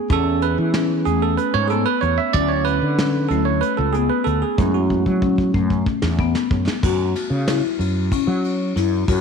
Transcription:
0.10 0.55 E2 loud
0.10 2.31 B3 soft
0.10 0.47 C#4 medium
0.10 2.32 C#4 medium
0.10 1.04 G#4 medium
0.10 0.45 A4 loud
0.10 kick loud
0.10 closed hi-hat medium
0.42 0.57 B4 medium
0.42 closed hi-hat medium
0.58 1.03 E3 medium
0.74 0.93 C#4 medium
0.74 snare loud
0.74 closed hi-hat medium
1.05 1.36 E2 medium
1.05 1.44 A3 medium
1.05 1.23 G#4 medium
1.05 closed hi-hat medium
1.22 1.39 A4 medium
1.37 1.55 B4 medium
1.37 closed hi-hat medium
1.54 1.84 G#2 medium
1.54 1.67 C#5 loud
1.68 2.08 B3 medium
1.68 1.71 G#4 medium
1.68 1.87 A4 medium
1.68 closed hi-hat medium
1.86 2.03 B4 loud
2.01 2.17 E2 medium
2.01 2.19 C#5 loud
2.01 closed hi-hat medium
2.18 2.35 E5 medium
2.33 2.79 D2 loud
2.33 2.77 F#3 medium
2.33 2.72 C#4 medium
2.33 2.78 C#4 medium
2.33 2.78 E4 medium
2.33 2.51 D5 loud
2.33 kick loud
2.33 closed hi-hat medium
2.48 2.66 C#5 medium
2.65 3.26 B4 loud
2.65 closed hi-hat medium
2.82 3.27 D3 medium
2.99 3.18 C#4 medium
2.99 snare loud
2.99 closed hi-hat medium
3.29 3.60 D2 medium
3.29 3.60 F#3 medium
3.29 3.68 A3 medium
3.29 3.60 C#4 soft
3.29 3.60 E4 medium
3.29 3.46 A4 medium
3.29 closed hi-hat medium
3.45 3.63 C#5 medium
3.61 3.77 B4 medium
3.61 closed hi-hat medium
3.77 4.08 C#2 medium
3.77 3.95 A4 medium
3.93 4.32 B3 medium
3.93 4.10 G#4 medium
3.93 closed hi-hat medium
4.10 4.27 B4 medium
4.24 4.41 D2 medium
4.24 4.42 A4 medium
4.24 closed hi-hat medium
4.42 4.76 G#4 medium
4.58 5.03 F#2 loud
4.58 5.51 G#3 medium
4.58 5.51 A3 soft
4.58 4.96 C#4 medium
4.58 5.52 E4 medium
4.58 kick loud
4.58 closed hi-hat medium
4.74 5.35 F#4 medium
4.90 kick medium
5.06 5.51 F#3 medium
5.06 kick medium
5.22 5.41 C#4 medium
5.22 kick medium
5.38 kick medium
5.54 5.84 F#2 medium
5.54 5.92 A3 medium
5.54 kick medium
5.70 kick medium
5.86 kick loud
6.02 6.33 E2 medium
6.02 snare medium
6.19 6.57 B3 medium
6.19 kick medium
6.35 snare medium
6.51 6.66 F#2 medium
6.51 kick loud
6.68 snare medium
6.83 7.13 F#2 loud
6.83 7.21 F#4 medium
6.83 kick loud
6.83 crash loud
7.16 snare soft
7.16 ride medium
7.30 7.60 C#3 medium
7.48 7.85 E4 medium
7.48 snare loud
7.48 ride medium
7.79 8.09 F#2 medium
7.79 ride medium
8.12 8.50 C#4 medium
8.12 kick loud
8.12 ride medium
8.27 8.72 F#3 medium
8.44 ride medium
8.76 9.05 F#2 medium
8.76 8.95 E4 medium
8.76 snare soft
8.76 ride medium
9.08 9.21 F#2 loud
9.08 9.21 F#4 medium
9.08 kick loud
9.08 ride medium

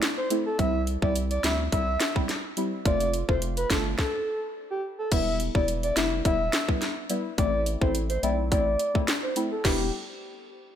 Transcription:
0.02 snare loud
0.02 closed hi-hat medium
0.17 0.28 C5 medium
0.30 0.45 A3 medium
0.30 0.45 C4 medium
0.30 0.45 E4 medium
0.30 closed hi-hat medium
0.46 0.57 A4 medium
0.58 0.97 C2 loud
0.58 0.98 G3 loud
0.58 0.99 C4 medium
0.58 0.99 E4 loud
0.58 0.82 E5 loud
0.58 kick loud
0.58 closed hi-hat medium
0.87 closed hi-hat medium
1.02 1.39 C2 loud
1.02 1.41 G3 medium
1.02 1.41 C4 medium
1.02 1.41 E4 medium
1.02 1.13 D5 medium
1.02 kick medium
1.16 closed hi-hat medium
1.31 1.41 D5 medium
1.31 closed hi-hat medium
1.44 1.69 D2 medium
1.44 1.70 G3 medium
1.44 1.70 C4 medium
1.44 1.70 E4 medium
1.44 1.56 E5 medium
1.44 snare loud
1.44 closed hi-hat medium
1.72 1.97 C2 loud
1.72 1.86 G3 loud
1.72 1.86 C4 medium
1.72 1.87 E4 loud
1.72 2.13 E5 loud
1.72 kick medium
1.72 closed hi-hat medium
2.00 snare loud
2.00 closed hi-hat medium
2.15 2.28 G3 medium
2.15 2.28 C4 medium
2.15 2.28 E4 medium
2.15 kick medium
2.29 snare medium
2.29 closed hi-hat medium
2.57 2.71 G3 medium
2.57 2.71 C4 medium
2.57 2.71 E4 medium
2.57 closed hi-hat medium
2.85 3.24 F1 loud
2.85 3.25 A3 loud
2.85 3.25 C4 medium
2.85 3.25 F4 loud
2.85 3.09 D5 loud
2.85 kick loud
2.85 closed hi-hat medium
3.00 closed hi-hat medium
3.14 closed hi-hat medium
3.29 3.65 F1 medium
3.29 3.67 A3 medium
3.29 3.67 C4 medium
3.29 3.67 F4 medium
3.29 3.40 C5 medium
3.29 kick medium
3.42 closed hi-hat medium
3.57 3.68 B4 medium
3.57 closed hi-hat medium
3.70 3.95 G1 medium
3.70 3.96 A3 medium
3.70 3.97 C4 medium
3.70 3.97 F4 medium
3.70 3.83 A4 medium
3.70 kick medium
3.70 snare loud
3.70 closed hi-hat medium
3.99 4.39 A4 loud
3.99 kick loud
3.99 snare medium
4.70 4.81 G4 medium
4.99 5.09 A4 medium
5.11 5.50 E1 loud
5.11 5.51 G3 loud
5.11 5.51 B3 medium
5.11 5.52 E4 loud
5.11 5.35 E5 loud
5.11 kick loud
5.11 closed hi-hat medium
5.11 crash loud
5.40 closed hi-hat medium
5.55 5.92 E1 medium
5.55 5.93 G3 medium
5.55 5.94 B3 medium
5.55 5.94 E4 medium
5.55 5.66 D5 medium
5.55 kick loud
5.68 closed hi-hat medium
5.83 5.94 D5 medium
5.83 closed hi-hat medium
5.96 6.22 F1 medium
5.96 6.23 G3 medium
5.96 6.23 B3 medium
5.96 6.23 E4 medium
5.96 6.09 E5 medium
5.96 snare loud
5.96 closed hi-hat medium
6.25 6.50 E1 loud
6.25 6.39 G3 medium
6.25 6.39 B3 medium
6.25 6.39 E4 loud
6.25 6.66 E5 loud
6.25 kick medium
6.25 closed hi-hat medium
6.53 snare loud
6.53 closed hi-hat medium
6.68 6.81 G3 medium
6.68 6.81 B3 medium
6.68 6.81 E4 medium
6.68 kick medium
6.82 snare medium
6.82 closed hi-hat medium
7.10 7.24 G3 medium
7.10 7.24 B3 medium
7.10 7.24 E4 medium
7.10 closed hi-hat medium
7.38 7.77 A1 loud
7.38 7.78 A3 loud
7.38 7.78 C4 medium
7.38 7.78 E4 loud
7.38 7.61 D5 loud
7.38 kick loud
7.38 closed hi-hat medium
7.66 closed hi-hat medium
7.81 8.18 A1 loud
7.81 8.20 A3 medium
7.81 8.20 C4 medium
7.81 8.20 E4 medium
7.81 7.92 C5 medium
7.81 kick medium
7.95 closed hi-hat medium
8.09 8.20 C5 medium
8.09 closed hi-hat medium
8.23 8.53 B1 loud
8.23 8.49 A3 medium
8.23 8.49 C4 medium
8.23 8.49 E4 medium
8.23 8.35 D5 medium
8.23 closed hi-hat medium
8.51 8.77 A1 loud
8.51 8.65 A3 loud
8.51 8.66 C4 medium
8.51 8.66 E4 loud
8.51 8.92 D5 loud
8.51 kick medium
8.51 closed hi-hat medium
8.79 closed hi-hat medium
8.94 9.07 A3 medium
8.94 9.07 C4 medium
8.94 9.07 E4 medium
8.94 kick medium
9.08 snare loud
9.08 closed hi-hat medium
9.23 9.34 C5 medium
9.36 9.50 A3 medium
9.36 9.50 C4 medium
9.36 9.51 E4 medium
9.36 closed hi-hat medium
9.52 9.62 A4 medium
9.64 9.91 E1 loud
9.64 9.86 G3 medium
9.64 9.86 B3 medium
9.64 9.86 E4 loud
9.64 9.91 G4 medium
9.64 kick loud
9.64 snare loud
9.64 crash medium

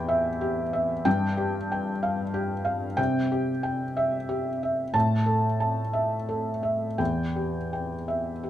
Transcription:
0.00 1.01 E2 medium
0.00 0.41 G4 medium
0.00 1.05 G5 medium
0.09 0.61 E5 medium
0.41 0.93 G4 medium
0.73 1.05 E5 medium
1.05 2.94 G2 medium
1.05 1.57 G5 medium
1.37 1.89 G4 medium
1.72 2.23 G5 medium
2.03 2.54 F5 medium
2.34 2.85 G4 medium
2.65 2.98 F5 medium
2.97 4.90 C3 medium
2.97 3.49 G5 medium
3.32 3.83 G4 medium
3.63 4.16 G5 medium
3.97 4.49 E5 medium
4.29 4.82 G4 medium
4.63 4.95 E5 soft
4.94 6.95 A2 medium
4.94 5.46 A5 medium
5.26 5.79 A4 soft
5.60 6.14 A5 soft
5.93 6.49 E5 soft
6.29 6.85 A4 soft
6.63 6.99 E5 soft
6.98 8.50 E2 soft
6.98 7.57 G5 medium
7.36 7.94 G4 soft
7.73 8.30 G5 soft
8.08 8.50 E5 soft
8.43 8.50 G4 soft

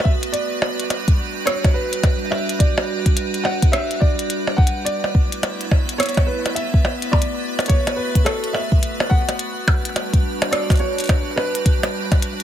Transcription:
0.00 0.30 A3 medium
0.00 0.30 B3 medium
0.00 4.82 F#4 medium
0.00 4.82 B4 medium
0.00 percussion blips medium
0.04 0.11 E5 loud
0.04 kick loud
0.23 closed hi-hat medium
0.32 4.83 G3 medium
0.32 4.82 D4 medium
0.32 1.50 D5 loud
0.32 closed hi-hat medium
0.62 percussion blips medium
0.80 closed hi-hat medium
0.90 closed hi-hat medium
0.90 percussion blips medium
1.08 kick loud
1.08 closed hi-hat soft
1.46 1.72 C#5 loud
1.46 cross-stick loud
1.46 closed hi-hat medium
1.64 kick loud
1.64 closed hi-hat soft
1.64 percussion blips medium
1.74 2.33 B4 medium
1.93 closed hi-hat medium
2.03 kick loud
2.03 closed hi-hat medium
2.03 percussion blips medium
2.31 2.60 E5 medium
2.31 percussion blips medium
2.49 closed hi-hat medium
2.59 3.12 D5 medium
2.59 kick loud
2.59 closed hi-hat medium
2.78 percussion blips medium
3.06 kick loud
3.06 closed hi-hat medium
3.17 closed hi-hat medium
3.34 closed hi-hat soft
3.44 3.73 F#5 loud
3.44 percussion blips medium
3.62 kick loud
3.62 closed hi-hat medium
3.72 3.99 E5 loud
3.72 cross-stick loud
3.72 closed hi-hat medium
3.91 closed hi-hat soft
4.00 4.59 D5 loud
4.00 kick loud
4.19 closed hi-hat medium
4.30 closed hi-hat medium
4.47 percussion blips soft
4.57 4.84 F#5 loud
4.57 kick loud
4.67 closed hi-hat medium
4.85 9.35 A3 medium
4.85 9.35 B3 medium
4.85 7.11 E4 medium
4.85 12.43 B4 medium
4.85 5.95 D5 loud
4.85 closed hi-hat medium
5.04 percussion blips medium
5.15 kick loud
5.32 closed hi-hat soft
5.43 closed hi-hat medium
5.43 percussion blips medium
5.61 closed hi-hat soft
5.71 kick loud
5.71 percussion blips medium
5.89 closed hi-hat medium
5.98 6.25 C#5 loud
5.98 cross-stick loud
5.98 closed hi-hat medium
6.03 closed hi-hat soft
6.06 closed hi-hat soft
6.09 closed hi-hat soft
6.14 kick loud
6.14 closed hi-hat soft
6.17 closed hi-hat soft
6.17 percussion blips medium
6.27 6.54 B4 medium
6.46 closed hi-hat soft
6.46 percussion blips soft
6.55 7.08 E5 loud
6.55 closed hi-hat medium
6.74 kick loud
6.85 percussion blips medium
7.02 closed hi-hat medium
7.11 9.37 F#4 medium
7.11 7.71 D5 loud
7.11 kick loud
7.11 percussion blips medium
7.22 closed hi-hat medium
7.59 closed hi-hat soft
7.59 percussion blips medium
7.66 7.95 C#5 loud
7.66 kick loud
7.66 closed hi-hat soft
7.70 closed hi-hat medium
7.87 closed hi-hat soft
7.87 percussion blips medium
7.96 8.26 B4 medium
8.15 kick loud
8.15 closed hi-hat soft
8.25 8.55 A4 loud
8.25 cross-stick loud
8.25 closed hi-hat medium
8.25 percussion blips medium
8.44 closed hi-hat soft
8.53 9.06 E5 loud
8.53 percussion blips medium
8.72 kick loud
8.83 closed hi-hat medium
9.00 percussion blips medium
9.10 10.56 F#5 loud
9.10 kick loud
9.29 closed hi-hat medium
9.29 percussion blips medium
9.39 12.43 G3 medium
9.39 12.43 D4 medium
9.39 12.43 F#4 medium
9.39 closed hi-hat medium
9.68 kick loud
9.68 percussion blips medium
9.85 closed hi-hat medium
9.96 closed hi-hat medium
9.96 percussion blips medium
10.13 kick loud
10.13 closed hi-hat soft
10.42 closed hi-hat medium
10.42 percussion blips medium
10.51 10.81 D5 loud
10.51 cross-stick loud
10.51 closed hi-hat medium
10.70 kick loud
10.70 closed hi-hat soft
10.70 percussion blips medium
10.72 closed hi-hat soft
10.76 closed hi-hat soft
10.77 closed hi-hat soft
10.79 11.33 C#5 medium
10.79 closed hi-hat soft
10.99 closed hi-hat soft
11.00 closed hi-hat soft
11.04 closed hi-hat soft
11.06 closed hi-hat soft
11.07 kick loud
11.07 closed hi-hat soft
11.09 closed hi-hat medium
11.09 percussion blips medium
11.36 12.43 B4 loud
11.36 percussion blips medium
11.55 closed hi-hat medium
11.66 kick loud
11.66 closed hi-hat medium
11.83 closed hi-hat soft
11.83 percussion blips medium
12.12 kick loud
12.12 closed hi-hat medium
12.12 percussion blips medium
12.22 closed hi-hat medium

